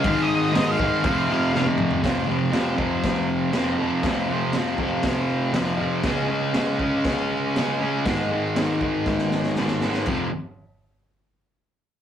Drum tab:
CC |----------------|----------------|----------------|----------------|
HH |o---o---o-------|o---o---o---o---|o---o---o---o---|o---o---o---o---|
SD |----o-------o---|o---o---o---o---|o---o---o---o---|o---o---o---o---|
T1 |-------------o--|----------------|----------------|----------------|
T2 |--------------o-|----------------|----------------|----------------|
FT |---------------o|----------------|----------------|----------------|
BD |o-----o-o-------|o-----o-o-------|o-----o-o-------|o-----o-o-------|

CC |----------------|x---------------|
HH |o---o-----------|----------------|
SD |o---o---oooooooo|----------------|
T1 |----------------|----------------|
T2 |----------------|----------------|
FT |----------------|----------------|
BD |o-----o-o-------|o---------------|